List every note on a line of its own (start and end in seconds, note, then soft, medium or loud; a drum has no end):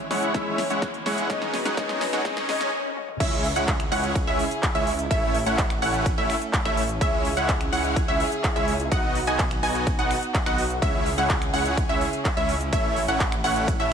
0.00 1.28 C#3 medium
0.00 0.32 E3 medium
0.00 0.33 G#3 medium
0.00 1.28 G#3 medium
0.00 0.33 C#4 medium
0.00 0.33 E4 medium
0.00 1.28 E4 medium
0.00 1.28 C#5 loud
0.00 riser medium
0.11 0.33 G#3 medium
0.11 0.33 C#4 medium
0.11 0.33 E4 medium
0.11 0.33 C#5 medium
0.11 0.33 F#5 medium
0.11 snare medium
0.11 open hi-hat loud
0.23 closed hi-hat soft
0.33 1.27 E3 medium
0.33 1.28 G#3 medium
0.33 0.62 G#3 medium
0.33 0.62 C#4 medium
0.33 1.28 C#4 medium
0.33 0.62 E4 medium
0.33 1.29 E4 medium
0.33 0.62 C#5 medium
0.33 kick loud
0.33 snare medium
0.33 closed hi-hat medium
0.58 snare medium
0.58 open hi-hat loud
0.70 0.87 G#3 medium
0.70 0.87 C#4 medium
0.70 0.87 E4 medium
0.70 0.87 C#5 medium
0.70 0.87 F#5 medium
0.70 closed hi-hat soft
0.82 kick loud
0.82 snare medium
0.82 closed hi-hat medium
0.94 closed hi-hat soft
1.06 1.28 G#3 medium
1.06 1.28 C#4 medium
1.06 1.28 E4 medium
1.06 1.28 C#5 medium
1.06 1.28 F#5 medium
1.06 snare medium
1.06 open hi-hat loud
1.18 closed hi-hat medium
1.29 2.71 B2 medium
1.29 1.75 D#3 medium
1.29 2.71 F#3 medium
1.29 1.75 G#3 medium
1.29 1.57 G#3 loud
1.29 1.57 C#4 medium
1.29 1.76 C#4 medium
1.29 2.71 D#4 medium
1.29 1.57 D#4 medium
1.29 1.76 D#4 medium
1.29 2.71 B4 medium
1.29 1.57 C#5 medium
1.29 1.57 D#5 loud
1.29 kick loud
1.29 snare medium
1.29 closed hi-hat medium
1.42 snare medium
1.54 snare medium
1.54 open hi-hat loud
1.65 1.75 G#3 medium
1.65 1.75 C#4 medium
1.65 1.75 D#4 medium
1.65 1.75 C#5 medium
1.65 1.75 F#5 medium
1.65 snare medium
1.65 closed hi-hat medium
1.76 2.22 D#3 medium
1.76 2.23 G#3 medium
1.76 2.04 G#3 loud
1.76 2.04 C#4 medium
1.76 2.23 C#4 medium
1.76 2.04 D#4 medium
1.76 2.24 D#4 loud
1.76 2.04 C#5 medium
1.76 2.04 D#5 loud
1.76 kick loud
1.76 snare loud
1.76 closed hi-hat medium
1.89 snare medium
1.89 closed hi-hat soft
2.01 snare loud
2.01 open hi-hat loud
2.13 2.23 G#3 medium
2.13 2.23 C#4 medium
2.13 2.23 D#4 medium
2.13 2.23 C#5 medium
2.13 2.23 F#5 medium
2.13 snare medium
2.13 closed hi-hat soft
2.24 2.46 D#3 medium
2.24 2.47 G#3 medium
2.24 2.47 C#4 medium
2.24 2.48 D#4 loud
2.24 kick loud
2.24 snare loud
2.24 closed hi-hat medium
2.24 swell medium
2.37 snare loud
2.48 2.70 D#3 medium
2.48 2.71 G#3 medium
2.48 2.71 G#3 loud
2.48 2.71 C#4 medium
2.48 2.71 D#4 loud
2.48 2.71 D#4 medium
2.48 2.71 C#5 medium
2.48 2.71 D#5 loud
2.48 snare loud
2.48 open hi-hat loud
2.61 snare medium
2.61 closed hi-hat medium
2.97 high tom medium
3.08 mid tom medium
3.20 3.54 C#2 medium
3.20 5.09 C#3 medium
3.20 3.47 G#3 loud
3.20 3.47 C#4 medium
3.20 8.88 C#4 medium
3.20 3.47 E4 medium
3.20 6.98 E4 medium
3.20 5.09 G#4 medium
3.20 3.47 C#5 medium
3.20 3.47 E5 loud
3.20 kick loud
3.20 closed hi-hat medium
3.20 ride medium
3.20 crash loud
3.44 open hi-hat loud
3.56 3.89 C#2 medium
3.56 3.73 G#3 medium
3.56 3.73 C#4 medium
3.56 3.73 E4 medium
3.56 3.73 C#5 medium
3.56 3.73 F#5 medium
3.56 closed hi-hat medium
3.68 kick loud
3.68 clap loud
3.68 closed hi-hat medium
3.68 ride medium
3.80 finger snap medium
3.80 closed hi-hat soft
3.92 4.25 C#2 loud
3.92 4.19 G#3 medium
3.92 4.19 C#4 medium
3.92 4.19 E4 medium
3.92 4.19 C#5 medium
3.92 4.19 F#5 loud
3.92 open hi-hat loud
4.04 closed hi-hat medium
4.15 kick loud
4.15 closed hi-hat medium
4.15 ride medium
4.27 4.42 C#2 loud
4.27 4.44 G#3 medium
4.27 4.44 C#4 medium
4.27 4.44 E4 medium
4.27 4.44 C#5 medium
4.27 4.44 E5 loud
4.39 open hi-hat loud
4.51 closed hi-hat medium
4.63 kick loud
4.63 clap loud
4.63 closed hi-hat medium
4.63 ride medium
4.75 5.08 C#2 loud
4.75 4.92 G#3 medium
4.75 4.92 C#4 medium
4.75 4.92 E4 medium
4.75 4.92 C#5 medium
4.75 4.92 E5 medium
4.75 closed hi-hat soft
4.87 open hi-hat loud
4.99 closed hi-hat medium
5.11 5.44 A1 medium
5.11 6.99 A3 medium
5.11 5.38 A3 loud
5.11 5.38 C#4 medium
5.11 5.38 E4 medium
5.11 5.38 C#5 medium
5.11 5.38 E5 loud
5.11 kick loud
5.11 closed hi-hat medium
5.11 ride medium
5.35 open hi-hat loud
5.46 5.80 A1 loud
5.46 5.63 A3 medium
5.46 5.63 C#4 medium
5.46 5.63 E4 medium
5.46 5.63 C#5 medium
5.46 5.63 F#5 medium
5.46 closed hi-hat medium
5.58 kick loud
5.58 clap loud
5.58 closed hi-hat medium
5.58 ride medium
5.70 finger snap medium
5.70 closed hi-hat soft
5.82 6.15 A1 loud
5.82 6.09 A3 medium
5.82 6.09 C#4 medium
5.82 6.09 E4 medium
5.82 6.09 C#5 medium
5.82 6.09 F#5 loud
5.82 open hi-hat loud
5.94 closed hi-hat medium
6.06 kick loud
6.06 closed hi-hat medium
6.06 ride medium
6.18 6.32 A1 loud
6.18 6.35 A3 medium
6.18 6.35 C#4 medium
6.18 6.35 E4 medium
6.18 6.35 C#5 medium
6.18 6.35 E5 loud
6.30 finger snap medium
6.30 open hi-hat loud
6.42 closed hi-hat medium
6.53 kick loud
6.53 clap loud
6.53 closed hi-hat medium
6.53 ride medium
6.65 6.99 A1 loud
6.65 6.82 A3 medium
6.65 6.82 C#4 medium
6.65 6.82 E4 medium
6.65 6.82 C#5 medium
6.65 6.82 E5 medium
6.65 finger snap medium
6.65 closed hi-hat soft
6.77 open hi-hat loud
6.89 closed hi-hat medium
7.01 7.35 C#2 medium
7.01 8.90 C#3 medium
7.01 7.28 G#3 loud
7.01 7.28 C#4 medium
7.01 7.28 E4 medium
7.01 8.90 E4 medium
7.01 8.90 G#4 loud
7.01 7.28 C#5 medium
7.01 7.28 E5 loud
7.01 kick loud
7.01 closed hi-hat medium
7.01 ride medium
7.25 open hi-hat loud
7.37 7.70 C#2 medium
7.37 7.54 G#3 medium
7.37 7.54 C#4 medium
7.37 7.54 E4 medium
7.37 7.54 C#5 medium
7.37 7.54 F#5 medium
7.37 closed hi-hat medium
7.49 kick loud
7.49 clap loud
7.49 closed hi-hat medium
7.49 ride medium
7.61 finger snap medium
7.61 closed hi-hat soft
7.73 8.06 C#2 medium
7.73 8.00 G#3 medium
7.73 8.00 C#4 medium
7.73 8.00 E4 medium
7.73 8.00 C#5 medium
7.73 8.00 F#5 loud
7.73 open hi-hat loud
7.85 closed hi-hat medium
7.96 kick loud
7.96 closed hi-hat medium
7.96 ride medium
8.08 8.23 C#2 loud
8.08 8.25 G#3 medium
8.08 8.25 C#4 medium
8.08 8.25 E4 medium
8.08 8.25 C#5 medium
8.08 8.25 E5 loud
8.20 open hi-hat loud
8.32 closed hi-hat soft
8.44 kick loud
8.44 clap loud
8.44 closed hi-hat medium
8.44 ride medium
8.56 8.89 C#2 loud
8.56 8.73 G#3 medium
8.56 8.73 C#4 medium
8.56 8.73 E4 medium
8.56 8.73 C#5 medium
8.56 8.73 E5 medium
8.56 closed hi-hat soft
8.68 open hi-hat loud
8.80 closed hi-hat medium
8.92 9.25 B1 medium
8.92 9.19 B3 loud
8.92 10.80 B3 medium
8.92 9.19 D#4 medium
8.92 10.80 D#4 medium
8.92 9.19 F#4 medium
8.92 10.80 F#4 medium
8.92 9.19 D#5 medium
8.92 9.19 F#5 loud
8.92 kick loud
8.92 closed hi-hat medium
8.92 ride medium
9.15 open hi-hat loud
9.27 9.61 B1 loud
9.27 9.44 B3 medium
9.27 9.44 D#4 medium
9.27 9.44 F#4 medium
9.27 9.44 D#5 medium
9.27 9.44 G#5 medium
9.27 closed hi-hat medium
9.39 kick loud
9.39 clap loud
9.39 closed hi-hat medium
9.39 ride medium
9.51 finger snap medium
9.51 closed hi-hat soft
9.63 9.96 B1 medium
9.63 9.90 B3 medium
9.63 9.90 D#4 medium
9.63 9.90 F#4 medium
9.63 9.90 D#5 medium
9.63 9.90 G#5 loud
9.63 open hi-hat loud
9.75 closed hi-hat soft
9.87 kick loud
9.87 closed hi-hat medium
9.87 ride medium
9.99 10.13 B1 loud
9.99 10.16 B3 loud
9.99 10.16 D#4 medium
9.99 10.16 F#4 medium
9.99 10.16 D#5 medium
9.99 10.16 F#5 loud
9.99 closed hi-hat soft
10.11 finger snap medium
10.11 open hi-hat loud
10.23 closed hi-hat soft
10.34 kick loud
10.34 clap loud
10.34 closed hi-hat medium
10.34 ride medium
10.46 10.80 B1 loud
10.46 10.63 B3 medium
10.46 10.63 D#4 medium
10.46 10.63 F#4 medium
10.46 10.63 D#5 medium
10.46 10.63 F#5 medium
10.46 finger snap medium
10.46 closed hi-hat soft
10.58 open hi-hat loud
10.70 closed hi-hat medium
10.82 11.16 C#2 medium
10.82 12.71 C#3 medium
10.82 11.09 G#3 loud
10.82 11.09 C#4 medium
10.82 13.93 C#4 medium
10.82 11.09 E4 medium
10.82 13.93 E4 medium
10.82 12.71 G#4 medium
10.82 11.09 C#5 medium
10.82 11.09 E5 loud
10.82 kick loud
10.82 closed hi-hat medium
10.82 ride medium
11.06 open hi-hat loud
11.18 11.51 C#2 loud
11.18 11.35 G#3 medium
11.18 11.35 C#4 medium
11.18 11.35 E4 medium
11.18 11.35 C#5 medium
11.18 11.35 F#5 medium
11.18 closed hi-hat soft
11.30 kick loud
11.30 clap loud
11.30 closed hi-hat medium
11.30 ride medium
11.42 finger snap medium
11.42 closed hi-hat soft
11.53 11.87 C#2 loud
11.53 11.81 G#3 medium
11.53 11.81 C#4 medium
11.53 11.81 E4 medium
11.53 11.81 C#5 medium
11.53 11.81 F#5 loud
11.53 open hi-hat loud
11.66 closed hi-hat medium
11.77 kick loud
11.77 closed hi-hat medium
11.77 ride medium
11.89 12.04 C#2 loud
11.89 12.06 G#3 medium
11.89 12.06 C#4 medium
11.89 12.06 E4 medium
11.89 12.06 C#5 medium
11.89 12.06 E5 loud
12.01 open hi-hat loud
12.13 closed hi-hat medium
12.25 kick loud
12.25 clap loud
12.25 closed hi-hat medium
12.25 ride medium
12.37 12.70 C#2 loud
12.37 12.54 G#3 medium
12.37 12.54 C#4 medium
12.37 12.54 E4 medium
12.37 12.54 C#5 medium
12.37 12.54 E5 medium
12.37 closed hi-hat soft
12.49 open hi-hat loud
12.61 closed hi-hat medium
12.73 13.06 A1 medium
12.73 13.93 A3 medium
12.73 13.00 A3 loud
12.73 13.00 C#4 medium
12.73 13.00 E4 medium
12.73 13.00 C#5 medium
12.73 13.00 E5 loud
12.73 kick loud
12.73 closed hi-hat medium
12.73 ride medium
12.96 open hi-hat loud
13.08 13.42 A1 loud
13.08 13.25 A3 medium
13.08 13.25 C#4 medium
13.08 13.25 E4 medium
13.08 13.25 C#5 medium
13.08 13.25 F#5 medium
13.08 closed hi-hat medium
13.20 kick loud
13.20 clap loud
13.20 closed hi-hat medium
13.20 ride medium
13.32 finger snap medium
13.32 closed hi-hat soft
13.44 13.77 A1 medium
13.44 13.71 A3 medium
13.44 13.71 C#4 medium
13.44 13.71 E4 medium
13.44 13.71 C#5 medium
13.44 13.71 F#5 loud
13.44 open hi-hat loud
13.56 closed hi-hat medium
13.68 kick loud
13.68 closed hi-hat medium
13.68 ride medium
13.80 13.93 A1 loud
13.80 13.93 A3 medium
13.80 13.93 C#4 medium
13.80 13.93 E4 medium
13.80 13.93 C#5 medium
13.80 13.93 E5 loud